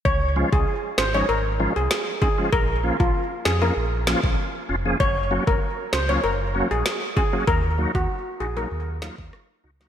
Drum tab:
SD |------o-----o---|------o---o-----|------o-----o---|----------o-r--o|
BD |o--o----------o-|o--o-------o----|o--o----------o-|o--o-------o----|